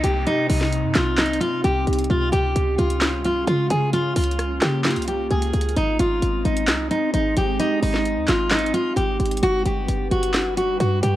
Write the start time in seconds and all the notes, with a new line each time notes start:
Already playing: C3 A#3 D#4, downlifter
0.04 C2 G4, closed hi-hat
0.27 C4 D#4, closed hi-hat
0.50 C2 D#4, open hi-hat
0.61 snare
0.72 closed hi-hat
0.84 G2
0.95 C2 F4, snare, clap, closed hi-hat
1.18 D#4, snare, clap, closed hi-hat
1.26 closed hi-hat
1.34 closed hi-hat
1.41 F4, closed hi-hat
1.64 C2 G4, closed hi-hat
1.87 C2, closed hi-hat
1.93 closed hi-hat
1.99 closed hi-hat
2.04 closed hi-hat
2.10 C#2 G#3 C#4 F4, closed hi-hat
2.32 C#2 G4, closed hi-hat
2.56 C#2, closed hi-hat
2.78 C#2 F4, closed hi-hat
2.90 closed hi-hat
3.01 snare, clap, closed hi-hat
3.25 F4, closed hi-hat
3.47 C#3 F4, closed hi-hat
3.70 C#3 G#4, closed hi-hat
3.93 A#3 F4, closed hi-hat
4.16 C#2 F4, closed hi-hat, open hi-hat
4.24 closed hi-hat
4.31 closed hi-hat
4.39 cross-stick, closed hi-hat
4.61 C#3 G4, cross-stick, snare, clap, closed hi-hat
4.84 F4, snare, clap, closed hi-hat
4.91 closed hi-hat
4.96 C2, closed hi-hat
5.02 closed hi-hat
5.08 G4, closed hi-hat
5.31 C#2 G#4, closed hi-hat
5.42 closed hi-hat
5.53 C#2, closed hi-hat
5.61 closed hi-hat
5.69 closed hi-hat
5.76 G#1 G#3 C4 D#4, closed hi-hat
5.99 G#1 F4, closed hi-hat
6.22 G#1, closed hi-hat
6.45 G#1 D#4, closed hi-hat
6.57 closed hi-hat
6.67 C2, snare, clap, closed hi-hat
6.91 D#4, closed hi-hat
7.14 G#1 D#4, closed hi-hat
7.37 G#1 G4, closed hi-hat
7.60 D#4, closed hi-hat
7.83 G#1 D#4, open hi-hat
7.94 snare
8.05 closed hi-hat
8.17 D#2
8.28 G#1 F4, snare, clap, closed hi-hat
8.51 D#4, snare, clap, closed hi-hat
8.59 closed hi-hat
8.67 closed hi-hat
8.74 F4, closed hi-hat
8.96 G#1 G4, closed hi-hat
9.20 G#1, closed hi-hat
9.26 closed hi-hat
9.31 closed hi-hat
9.37 closed hi-hat
9.43 G1 G3 D4 F#4 B4, closed hi-hat
9.66 G1 G4, closed hi-hat
9.89 G1, closed hi-hat
10.11 G1 F#4, closed hi-hat
10.23 closed hi-hat
10.34 snare, clap, closed hi-hat
10.57 F#4, closed hi-hat
10.80 G2 F#4, closed hi-hat
11.03 G2 G4, closed hi-hat